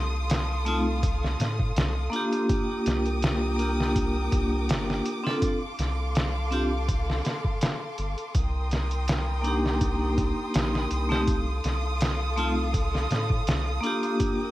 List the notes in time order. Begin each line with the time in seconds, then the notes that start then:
Already playing: C2 A4 F5 C6 D#6
0.30 snare, closed hi-hat
0.65 A3 C4 D#4 F4, closed hi-hat
1.03 kick, closed hi-hat
1.24 snare
1.40 A2, snare, closed hi-hat
1.59 kick
1.76 C2, snare, closed hi-hat
2.10 A#3 D4 F4, closed hi-hat
2.16 G4
2.33 closed hi-hat
2.49 A#4 G5 D6 D#6, kick, closed hi-hat
2.86 C2, snare, closed hi-hat
3.06 closed hi-hat
3.22 snare, closed hi-hat
3.56 A#3 D4 F4, closed hi-hat
3.62 G4
3.80 snare
3.96 kick, closed hi-hat
4.32 C2, kick, closed hi-hat
4.69 G1, snare, closed hi-hat
4.90 snare
5.05 closed hi-hat
5.24 C4 D4 F4 A4, snare
5.42 A4 F5 C6, kick, closed hi-hat
5.79 C2, snare, closed hi-hat
6.15 snare, closed hi-hat
6.51 C4 D4 F4 G4, closed hi-hat
6.88 kick, closed hi-hat
7.10 snare
7.25 snare, closed hi-hat
7.45 kick
7.61 snare, closed hi-hat
7.98 G1, closed hi-hat
8.18 closed hi-hat
8.34 C2 A#4 G5 C6 D#6, kick, closed hi-hat
8.71 snare, closed hi-hat
8.91 closed hi-hat
9.08 snare, closed hi-hat
9.42 A#3 D4 D#4, closed hi-hat
9.47 G4
9.66 snare
9.81 kick, closed hi-hat
10.18 kick, closed hi-hat
10.54 A#1, snare, closed hi-hat
10.75 snare
10.91 C2, closed hi-hat
11.09 A3 C4 D#4 G4, snare
11.27 A4 F5, kick, closed hi-hat
11.64 C2, snare, closed hi-hat
12.01 snare, closed hi-hat
12.36 A3 C4 D#4 F4, closed hi-hat
12.74 kick, closed hi-hat
12.95 snare
13.11 A2, snare, closed hi-hat
13.30 kick
13.47 C2, snare, closed hi-hat
13.81 A#3 D4, closed hi-hat
13.85 F4 G4
14.03 closed hi-hat
14.20 A#4 G5 D6, kick, closed hi-hat